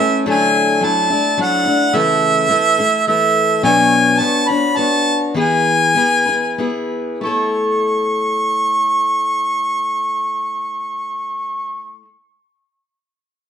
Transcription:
Already playing: steel-string acoustic guitar E4, harmonica E5
0.00 steel-string acoustic guitar A3 C#4
0.26 steel-string acoustic guitar D3 F#3 A3 D4 E4
0.30 harmonica G#5
0.81 steel-string acoustic guitar F#3 A3 D4 E4, harmonica A5
1.10 steel-string acoustic guitar A3 D4 E4
1.38 steel-string acoustic guitar F#3 A3 D4 E4, harmonica F#5
1.65 steel-string acoustic guitar A3 D4 E4
1.93 steel-string acoustic guitar C#3 E3 A3 E4 A4, harmonica E5
2.49 steel-string acoustic guitar E3 A3 E4 A4
2.78 steel-string acoustic guitar A3 E4 A4
3.07 steel-string acoustic guitar E3 A3 E4 A4, harmonica E5
3.63 steel-string acoustic guitar B2 F#3 B3 D4 F#4 C#5, harmonica G#5
4.19 steel-string acoustic guitar B3 D4 F#4 C#5, harmonica A5
4.48 steel-string acoustic guitar B3 D4 F#4 C#5, harmonica B5
4.76 steel-string acoustic guitar B3 D4 F#4 C#5, harmonica A5
5.34 steel-string acoustic guitar E3 B3 E4 G#4 B4, harmonica G#5
5.94 steel-string acoustic guitar B3 E4 G#4 B4
6.26 steel-string acoustic guitar E4 G#4 B4
6.58 steel-string acoustic guitar B3 E4 G#4 B4
7.21 steel-string acoustic guitar A3 E4, harmonica C#6
7.25 steel-string acoustic guitar A4 C#5

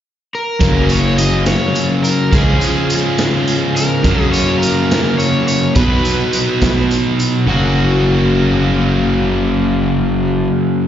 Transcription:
0.35 overdriven electric guitar A#4
0.60 fingered electric bass F#1, distorted electric guitar F#2 C#3 F#3 A#3 C#4, kick, closed hi-hat
0.89 overdriven electric guitar C#5, closed hi-hat
1.18 overdriven electric guitar D#5, closed hi-hat
1.46 overdriven electric guitar C#5, snare, closed hi-hat
1.75 closed hi-hat
2.03 overdriven electric guitar A#4, closed hi-hat
2.32 fingered electric bass C#2, distorted electric guitar C#3 F3 G#3 C#4, overdriven electric guitar G#4, kick, closed hi-hat
2.61 closed hi-hat
2.90 closed hi-hat
3.18 snare, closed hi-hat
3.47 closed hi-hat
3.76 overdriven electric guitar A#4, closed hi-hat
4.04 distorted electric guitar F#2 C#3 F#3 A#3 C#4, fingered electric bass F#2, kick, closed hi-hat
4.32 overdriven electric guitar C#5, closed hi-hat
4.59 overdriven electric guitar A#4, closed hi-hat
4.91 snare, closed hi-hat
5.18 overdriven electric guitar C#5, closed hi-hat
5.47 overdriven electric guitar C#5, closed hi-hat
5.75 fingered electric bass B1, distorted electric guitar B2 F#3 B3, overdriven electric guitar B4, kick, closed hi-hat
5.80 distorted electric guitar D#4
6.05 closed hi-hat
6.33 closed hi-hat
6.62 kick, snare, closed hi-hat
6.91 closed hi-hat
7.19 closed hi-hat
7.46 fingered electric bass F#1, distorted electric guitar F#2 C#3 F#3 A#3, overdriven electric guitar F#4
7.51 distorted electric guitar C#4

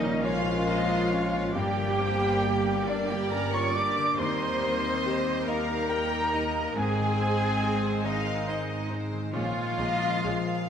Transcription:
Already playing: double bass section A#1, grand piano A#2 A#3 A#4, harp A#2 F3 A#3 C#4 F4 G#5, french horn section D#3, clarinet G3, viola section A#3 C#4, cello section D#4, violin section D#5, flute D#5
0.02 harp A#4
0.23 french horn section F3, clarinet G#3, cello section F4, harp G#4, grand piano C#5, violin section F5, flute F5
0.46 harp A#4
0.67 harp G#4, grand piano A#4, violin section D#5
0.90 harp C#4
1.11 harp A#3, grand piano C#4, violin section C#5
1.33 harp F3
1.54 double bass section G1, harp G2, grand piano G2, viola section G3 A#3, french horn section G3, clarinet A#3, cello section G4, violin section D5 G5, flute G5
1.77 harp D3
2.00 harp A#3, grand piano A#3, violin section C5
2.21 harp D4
2.44 grand piano G4, harp G4, violin section D5
2.67 harp A#4
2.88 french horn section D3, clarinet G3, cello section D4, harp G4, violin section D5, grand piano D5, flute D5
3.09 french horn section G3, clarinet A#3, cello section G4, harp A#4, flute G5, violin section G5
3.31 french horn section A#3, clarinet C#4, harp G4, cello section A#4, grand piano A#4, violin section A#5, flute A#5
3.53 french horn section C#4, harp D4, clarinet F4, cello section C#5, violin section C#6, flute C#6
3.75 harp A#3, grand piano D4, french horn section D4, clarinet G4, cello section D5, flute D6, violin section D6
3.97 harp D3
4.18 grand piano D#2, double bass section D#2, harp D#3, french horn section C4, clarinet D#4, cello section C5, violin section D#5 C6, flute C6
4.41 harp A#3
4.62 grand piano A#3
4.84 harp G4
5.06 grand piano G4, harp A#4
5.28 harp D#5
5.48 french horn section A#3, clarinet D#4, harp A#4, cello section A#4, grand piano D#5, violin section F5 A#5, flute A#5
5.70 harp D#5
5.90 grand piano A#4, harp A#4, violin section G5
6.13 harp G4
6.33 grand piano D#4, harp D#4, violin section D#5
6.75 double bass section G#1, grand piano G#2, harp G#2, french horn section G#3, viola section G#3 C4, clarinet C4, cello section G#4, violin section C5 G#5, flute G#5
6.99 harp D#3
7.20 grand piano C4, harp C4
7.41 harp D#4
7.63 grand piano G#4
7.84 harp C5
8.04 french horn section D#3, clarinet G#3, cello section D#4, harp G#4, grand piano D#5, flute D#5, violin section D#5 F5
8.27 harp C5
8.47 harp G#4, grand piano C5, violin section D#5
8.69 harp D#4
8.91 harp C4, grand piano D#4, violin section C5
9.12 harp D#3
9.32 double bass section A#1, grand piano A#2, harp A#2, french horn section F3, clarinet G#3, viola section G#3 C#4, cello section F4, violin section C#5 F5, flute F5
9.56 harp F3
9.78 double bass section A#1, viola section G#3 C#4, grand piano A#3, harp A#3, violin section D#5
10.01 harp C#4
10.24 double bass section A#1, viola section G#3 C#4, harp G#4, grand piano G#4, violin section F5
10.47 harp A#4

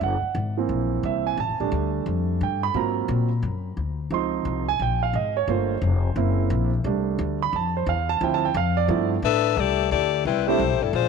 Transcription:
0.01 upright bass F#1, grand piano F#5
0.22 muted upright bass stroke
0.35 upright bass G#1
0.57 grand piano E3 A#3 C4
0.69 upright bass A#1
1.03 upright bass C2, grand piano E5
1.27 grand piano G#5
1.37 upright bass A1, grand piano A5
1.49 upright bass F1
1.60 upright bass D1, grand piano G3 A3 D4
1.72 upright bass D2
2.06 upright bass F2
2.41 upright bass G2, grand piano G5
2.63 grand piano B5
2.74 upright bass G#2, grand piano F#3 A#3 C4 F4 A#5
3.08 upright bass A#2
3.42 upright bass F#2
3.77 upright bass D2
4.10 upright bass C#2, grand piano F3 C4 D#4 C6
4.45 upright bass C2
4.69 grand piano G#5
4.79 upright bass A#1, grand piano G5
5.03 grand piano F5
5.13 upright bass G#1, grand piano D#5
5.37 grand piano C#5
5.48 upright bass G1, grand piano A3 A#3 F4 C5
5.82 upright bass F1
6.16 upright bass F#1, grand piano A#3 C4 E4
6.50 upright bass A#1
6.84 upright bass C2, grand piano G3 A3 D4
7.19 upright bass D2
7.42 grand piano B5
7.53 upright bass F2, grand piano A5
7.77 grand piano C5
7.86 upright bass E2, grand piano F5
8.09 grand piano A5
8.21 upright bass D2, grand piano F3 C4 E4 G5
8.34 grand piano A5
8.45 grand piano G5
8.54 upright bass F2, grand piano F5
8.77 grand piano D5
8.88 upright bass G2, grand piano F3 A3 B3 E4
9.22 upright bass A2, saxophone section D4 A4 B4 E5
9.57 upright bass C2, saxophone section A3 E4 G4 D5
9.91 upright bass D2, saxophone section A3 E4 G4 D5
10.25 upright bass C2, saxophone section G3 C4 E4 B4
10.47 grand piano G3 A3 C4 D4 E4, saxophone section A3 E4 G4 C5
10.59 upright bass B1
10.71 upright bass A1
10.82 upright bass G1, saxophone section G3 D4 E4 A4
10.93 upright bass A#1, saxophone section G#3 D4 F4 C5

